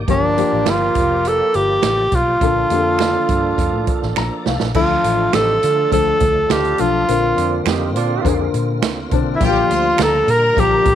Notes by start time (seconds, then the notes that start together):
Already playing: A#3 G4 D5
0.08 G1 F3 A#3 D4 F4 G4 A#4, kick, closed hi-hat
0.37 F3 A#3 G4, closed hi-hat
0.53 A1
0.66 G1 F4, finger snap, snare, closed hi-hat
0.95 F1, kick, closed hi-hat
1.25 A4, closed hi-hat
1.54 G1 G4, closed hi-hat
1.82 A1, finger snap, snare, closed hi-hat
2.12 B1 F4, kick, closed hi-hat
2.40 A#1 D3 A#3 D4 F4 A4, kick, closed hi-hat
2.70 F2 D3 A#3 G4, closed hi-hat
2.77 A4
2.99 finger snap, snare, closed hi-hat
3.29 G2, kick, closed hi-hat
3.58 F2, kick, closed hi-hat
3.73 A2
3.87 kick, closed hi-hat
4.02 A1, snare
4.16 A#1 A#5, finger snap, snare
4.46 C2 F5, snare
4.60 A#1, snare
4.75 D2 F3 A3 D4 F4 A4, kick, crash
5.04 A1 A3 D4 F4, closed hi-hat
5.33 A1 C4 D#4 G4 A4, finger snap, snare, closed hi-hat
5.63 D3 D4 F4 A4, closed hi-hat
5.91 D2 F3 D4 A4 C5, kick, closed hi-hat
6.20 D2, kick, closed hi-hat
6.49 D2 D4 F4 G4 A4, finger snap, snare, closed hi-hat
6.65 closed hi-hat
6.78 B1 F3 D4 F4 A4, closed hi-hat
7.08 A#1 D3 A#3 C4 F4 A#4, closed hi-hat
7.35 F2 C4 D4 F4, closed hi-hat
7.66 F2 C4 D#4 G4, finger snap, snare, closed hi-hat
7.95 A#2 C4 D4 F4, closed hi-hat
8.24 F2 D3 C4 A#4, kick, closed hi-hat
8.54 A#2, closed hi-hat
8.82 D2, finger snap, snare, closed hi-hat
9.11 B1 D3 C4 D4, kick, closed hi-hat
9.35 E4
9.40 A#1 F3 G3 A#3 F4 G4 G5, kick, closed hi-hat
9.45 F4 G4
9.70 D2 C5 C6, closed hi-hat
9.98 D2 A#4 A#5, finger snap, snare, closed hi-hat
10.03 A4
10.28 A#2 A#4 A#5, closed hi-hat
10.57 A#1 F3 A#3 G4, kick, closed hi-hat
10.85 A#1, kick, closed hi-hat